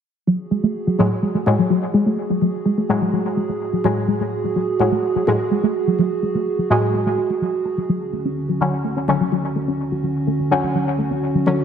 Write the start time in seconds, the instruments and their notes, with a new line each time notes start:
0.27 synth arpeggio sound F#3, analog synth pad F#4 G#4
0.51 synth arpeggio sound G#3
0.63 synth arpeggio sound A3
0.87 synth arpeggio sound F#3
0.99 synth stab A2 F#3 G#3, synth arpeggio sound F#3
1.23 synth arpeggio sound G#3
1.35 synth arpeggio sound A3
1.46 synth stab A2 F#3 G#3
1.59 synth arpeggio sound F#3
1.70 synth arpeggio sound F#3
1.94 synth arpeggio sound G#3
2.06 synth arpeggio sound A3
2.30 synth arpeggio sound F#3
2.42 synth arpeggio sound F#3
2.65 synth arpeggio sound G#3
2.78 synth arpeggio sound A3
2.89 synth stab A2 F#3 G#3
3.01 synth arpeggio sound F#3
3.13 synth arpeggio sound F#3
3.37 synth arpeggio sound G#3
3.49 synth arpeggio sound A3
3.73 synth arpeggio sound F#3
3.84 synth stab A2 F#3 G#3, synth arpeggio sound F#3
4.08 synth arpeggio sound G#3
4.20 synth arpeggio sound A3
4.44 synth arpeggio sound F#3
4.56 synth arpeggio sound F#3
4.80 synth stab A2 F#3 G#3, synth arpeggio sound G#3
4.92 synth arpeggio sound A3
5.16 synth arpeggio sound F#3
5.27 synth stab A2 F#3 G#3, synth arpeggio sound F#3
5.51 synth arpeggio sound G#3
5.63 synth arpeggio sound A3
5.87 synth arpeggio sound F#3
5.99 synth arpeggio sound F#3
6.23 synth arpeggio sound G#3
6.35 synth arpeggio sound A3
6.59 synth arpeggio sound F#3
6.70 synth stab A2 F#3 G#3, synth arpeggio sound F#3
6.94 synth arpeggio sound G#3
7.06 synth arpeggio sound A3
7.18 synth arpeggio sound G#4
7.30 synth arpeggio sound A3
7.42 synth arpeggio sound F#3
7.65 synth arpeggio sound A4
7.78 synth arpeggio sound F#3
7.89 analog synth pad D3 C#4 F#4, synth arpeggio sound F#3
8.13 synth arpeggio sound A3
8.25 synth arpeggio sound C#4
8.49 synth arpeggio sound F#3
8.61 synth stab D3 F#3 C#4, synth arpeggio sound F#3
8.84 synth arpeggio sound A3
8.97 synth arpeggio sound C#4
9.08 synth stab D3 F#3 C#4
9.21 synth arpeggio sound F#3
9.32 synth arpeggio sound F#3
9.56 synth arpeggio sound A3
9.68 synth arpeggio sound C#4
9.92 synth arpeggio sound F#3
10.04 synth arpeggio sound F#3
10.27 synth arpeggio sound A3
10.39 synth arpeggio sound C#4
10.51 synth stab D3 F#3 C#4
10.63 synth arpeggio sound F#3
10.75 synth arpeggio sound F#3
10.99 synth arpeggio sound A3
11.11 synth arpeggio sound C#4
11.35 synth arpeggio sound F#3
11.46 synth stab D3 F#3 C#4, synth arpeggio sound F#3